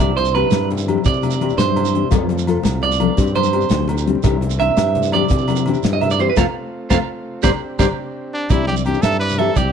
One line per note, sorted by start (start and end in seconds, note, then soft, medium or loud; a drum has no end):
0.00 0.43 C2 medium
0.00 6.33 C4 medium
0.00 0.10 C4 medium
0.00 2.09 D4 medium
0.00 0.11 D4 medium
0.00 2.09 E4 medium
0.00 0.11 G4 medium
0.00 0.16 D5 medium
0.08 low conga soft
0.17 0.34 C5 loud
0.17 closed hi-hat soft
0.17 low conga medium
0.25 shekere medium
0.34 0.45 E3 medium
0.34 0.46 C4 medium
0.34 0.46 D4 medium
0.34 0.46 G4 medium
0.34 0.68 B4 medium
0.34 closed hi-hat soft
0.34 low agogo medium
0.44 high conga medium
0.44 low conga medium
0.51 0.96 G2 medium
0.51 snare medium
0.51 closed hi-hat medium
0.51 muted conga medium
0.51 low agogo medium
0.51 shekere medium
0.70 closed hi-hat soft
0.70 low conga medium
0.78 shekere medium
0.86 0.98 E3 medium
0.86 0.98 C4 medium
0.86 0.99 D4 medium
0.86 0.99 G4 medium
0.86 closed hi-hat soft
0.86 high conga medium
0.86 low agogo medium
0.98 low conga medium
1.05 1.50 C3 medium
1.05 1.55 D5 loud
1.05 kick loud
1.05 closed hi-hat medium
1.05 muted conga medium
1.05 low conga soft
1.05 shekere loud
1.15 low conga soft
1.22 closed hi-hat soft
1.22 high conga medium
1.22 low conga medium
1.22 low agogo medium
1.22 shekere soft
1.31 shekere medium
1.40 1.51 E3 medium
1.40 1.52 C4 medium
1.40 1.52 G4 medium
1.40 closed hi-hat medium
1.40 low agogo medium
1.49 low conga medium
1.49 shekere soft
1.58 2.02 G2 medium
1.58 2.08 C5 medium
1.58 snare medium
1.58 closed hi-hat medium
1.58 muted conga medium
1.58 low conga soft
1.58 shekere medium
1.70 high conga medium
1.76 closed hi-hat medium
1.76 low conga loud
1.76 low agogo medium
1.85 low conga soft
1.85 shekere medium
1.93 2.04 E3 medium
1.93 2.04 C4 medium
1.93 2.05 D4 medium
1.93 2.06 G4 medium
1.93 closed hi-hat soft
2.03 low conga medium
2.10 2.56 F2 loud
2.10 2.22 F3 medium
2.10 3.17 A3 medium
2.10 2.22 F4 medium
2.10 3.17 F4 medium
2.10 2.23 A4 medium
2.10 muted nylon-string guitar stroke medium
2.10 kick medium
2.10 closed hi-hat medium
2.10 muted conga loud
2.10 high conga loud
2.10 low agogo medium
2.10 shekere loud
2.20 low conga soft
2.29 closed hi-hat soft
2.29 low conga medium
2.38 shekere medium
2.46 2.57 F3 medium
2.46 2.58 C4 medium
2.46 2.58 F4 medium
2.46 2.59 A4 medium
2.46 snare soft
2.46 closed hi-hat medium
2.46 low agogo medium
2.55 low conga medium
2.63 3.09 C2 medium
2.63 snare medium
2.63 closed hi-hat medium
2.63 muted conga loud
2.63 low agogo medium
2.63 shekere loud
2.82 3.32 D5 loud
2.82 closed hi-hat medium
2.82 low conga medium
2.92 shekere medium
2.99 3.11 F3 medium
2.99 3.11 C4 medium
2.99 3.11 F4 medium
2.99 3.12 A4 medium
2.99 closed hi-hat soft
2.99 high conga loud
2.99 low agogo medium
3.08 low conga medium
3.17 3.62 G2 medium
3.17 3.28 G3 medium
3.17 3.28 C4 medium
3.17 3.29 D4 medium
3.17 6.34 D4 medium
3.17 4.24 G4 medium
3.17 3.29 G4 medium
3.17 kick loud
3.17 closed hi-hat medium
3.17 muted conga medium
3.17 low conga soft
3.17 shekere loud
3.27 low conga soft
3.27 shekere soft
3.35 3.85 C5 medium
3.35 closed hi-hat soft
3.35 high conga medium
3.35 low conga medium
3.35 low agogo medium
3.35 shekere soft
3.44 shekere medium
3.52 3.63 G3 medium
3.52 3.64 C4 medium
3.52 3.65 D4 medium
3.52 3.65 G4 medium
3.52 closed hi-hat soft
3.52 low agogo medium
3.61 low conga medium
3.61 shekere soft
3.70 4.15 D2 loud
3.70 snare medium
3.70 closed hi-hat medium
3.70 muted conga medium
3.70 low conga soft
3.70 shekere medium
3.79 high conga medium
3.88 closed hi-hat medium
3.88 low conga medium
3.88 low agogo medium
3.98 low conga soft
3.98 shekere medium
4.06 4.17 G3 medium
4.06 4.18 C4 medium
4.06 4.18 D4 medium
4.06 4.19 G4 medium
4.06 closed hi-hat soft
4.15 low conga medium
4.23 4.69 C2 medium
4.23 4.35 E3 medium
4.23 4.35 D4 medium
4.23 6.35 E4 medium
4.23 4.36 G4 loud
4.23 muted nylon-string guitar stroke medium
4.23 kick medium
4.23 closed hi-hat medium
4.23 muted conga loud
4.23 high conga loud
4.23 low agogo medium
4.23 shekere loud
4.33 low conga soft
4.41 closed hi-hat medium
4.41 low conga loud
4.50 shekere medium
4.59 4.71 E3 medium
4.59 4.71 C4 medium
4.59 4.71 D4 medium
4.59 5.09 E5 loud
4.59 muted nylon-string guitar stroke medium
4.59 closed hi-hat medium
4.59 low agogo medium
4.69 low conga medium
4.77 5.22 G2 medium
4.77 snare medium
4.77 closed hi-hat medium
4.77 muted conga medium
4.77 low agogo medium
4.77 shekere medium
4.95 closed hi-hat medium
4.95 low conga loud
5.03 shekere medium
5.12 5.23 E3 medium
5.12 5.24 C4 medium
5.12 5.25 D4 medium
5.12 5.25 G4 medium
5.12 5.63 D5 loud
5.12 closed hi-hat medium
5.12 high conga loud
5.12 low agogo medium
5.21 low conga medium
5.29 5.75 C3 loud
5.29 kick medium
5.29 closed hi-hat medium
5.29 muted conga medium
5.29 low conga soft
5.29 shekere medium
5.38 shekere soft
5.48 closed hi-hat soft
5.48 high conga medium
5.48 low conga medium
5.48 low agogo medium
5.48 shekere soft
5.56 shekere medium
5.66 5.77 E3 medium
5.66 5.77 C4 medium
5.66 5.78 D4 medium
5.66 5.78 G4 medium
5.66 closed hi-hat medium
5.66 low agogo medium
5.74 low conga medium
5.74 shekere soft
5.83 6.29 G2 medium
5.83 snare medium
5.83 closed hi-hat medium
5.83 muted conga medium
5.83 low conga soft
5.83 shekere medium
5.93 6.02 D#5 medium
5.93 high conga medium
6.01 6.11 E5 medium
6.01 closed hi-hat medium
6.01 low conga medium
6.01 low agogo medium
6.10 6.20 D5 loud
6.10 low conga soft
6.10 shekere medium
6.18 6.30 E3 medium
6.18 6.30 C4 medium
6.18 6.31 D4 medium
6.18 6.31 G4 medium
6.18 6.29 C5 medium
6.18 closed hi-hat soft
6.29 6.37 B4 medium
6.29 low conga medium
6.36 6.44 F2 medium
6.36 7.42 A3 medium
6.36 6.43 A3 medium
6.36 8.47 C4 medium
6.36 6.43 C4 loud
6.36 7.42 F4 medium
6.36 6.43 F4 loud
6.36 6.43 A4 medium
6.36 6.43 C5 medium
6.36 6.43 F5 medium
6.36 kick medium
6.36 snare medium
6.36 low conga loud
6.36 low agogo loud
6.36 shekere loud
6.90 6.97 F2 loud
6.90 6.96 A3 loud
6.90 6.96 C4 loud
6.90 6.96 F4 loud
6.90 6.96 A4 loud
6.90 6.96 C5 loud
6.90 6.96 F5 medium
6.90 kick medium
6.90 snare medium
6.90 low conga medium
6.90 low agogo loud
6.90 shekere loud
7.43 7.51 G1 medium
7.43 7.49 G3 loud
7.43 7.49 C4 loud
7.43 7.49 D4 loud
7.43 8.50 D4 medium
7.43 7.49 G4 loud
7.43 8.50 G4 medium
7.43 7.49 C5 medium
7.43 7.49 D5 loud
7.43 kick medium
7.43 snare medium
7.43 low conga medium
7.43 low agogo loud
7.43 shekere loud
7.79 7.86 G1 loud
7.79 7.85 G3 loud
7.79 7.85 C4 loud
7.79 7.85 D4 loud
7.79 7.85 G4 loud
7.79 7.85 C5 medium
7.79 7.85 D5 loud
7.79 kick medium
7.79 snare medium
7.79 low conga medium
7.79 low agogo loud
7.79 shekere medium
8.34 8.52 D4 medium
8.50 8.94 C2 medium
8.50 8.61 E3 medium
8.50 8.61 C4 medium
8.50 9.72 C4 medium
8.50 9.72 D4 medium
8.50 8.62 D4 medium
8.50 8.67 E4 medium
8.50 9.72 E4 medium
8.50 8.62 G4 medium
8.50 8.62 D5 medium
8.50 kick medium
8.50 closed hi-hat medium
8.50 muted conga medium
8.50 low agogo medium
8.50 shekere loud
8.60 low conga medium
8.67 8.76 G4 medium
8.67 8.80 D5 medium
8.67 closed hi-hat soft
8.67 high conga medium
8.67 low conga soft
8.76 shekere medium
8.85 8.96 E3 medium
8.85 8.97 C4 medium
8.85 8.97 D4 medium
8.85 9.03 G4 medium
8.85 8.98 G4 medium
8.85 closed hi-hat soft
8.85 low agogo medium
8.85 shekere soft
8.94 muted conga medium
8.94 low conga medium
8.94 shekere soft
9.02 9.48 G2 medium
9.02 9.19 A4 loud
9.02 9.15 E5 medium
9.02 snare medium
9.02 closed hi-hat medium
9.02 low agogo medium
9.02 shekere medium
9.11 high conga medium
9.11 shekere soft
9.20 9.40 B4 loud
9.20 9.33 D5 medium
9.20 closed hi-hat soft
9.29 low conga medium
9.29 shekere medium
9.37 9.49 E3 medium
9.37 9.50 C4 medium
9.37 9.50 D4 medium
9.37 9.51 G4 medium
9.37 9.59 A4 medium
9.37 9.50 E5 medium
9.37 closed hi-hat soft
9.37 muted conga medium
9.37 low agogo medium
9.56 9.72 C2 medium
9.56 9.72 G4 medium
9.56 9.68 D5 medium
9.56 kick medium
9.56 closed hi-hat medium
9.56 high conga medium
9.56 shekere loud
9.65 low conga medium